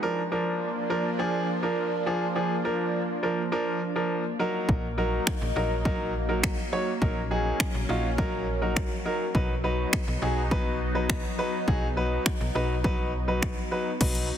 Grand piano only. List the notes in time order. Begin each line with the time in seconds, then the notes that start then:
0.02 F3 D4 A#4
0.32 F3 D4 A#4
0.90 F3 D4 A#4
1.19 F3 D4 G#4
1.63 F3 D4 A#4
2.06 F3 D4 G#4
2.35 F3 D4 G#4
2.64 F3 D4 A#4
3.23 F3 D4 A#4
3.52 F3 D4 A#4
3.96 F3 D4 A#4
4.39 F#3 D#4 A#4
4.98 F#3 D#4 A#4
5.56 F#3 D#4 A#4
5.85 F#3 D#4 A#4
6.29 F#3 D#4 A#4
6.72 F#3 D#4 C#5
7.02 F#3 D#4 A#4
7.31 F#3 D#4 G#4
7.89 F#3 D#4 F4
8.18 F#3 D#4 A#4
8.62 F#3 D#4 A#4
9.05 F#3 D#4 A#4
9.34 F#3 D#4 B4
9.64 F#3 D#4 B4
10.22 F#3 D#4 G#4
10.51 F#3 D#4 B4
10.95 F#3 D#4 B4
11.38 F#3 D#4 B4
11.67 F#3 D#4 G#4
11.97 F#3 D#4 B4
12.55 F#3 D#4 B4
12.84 F#3 D#4 B4
13.28 F#3 D#4 B4
13.71 F#3 D#4 B4
14.01 F#3 D#4 B4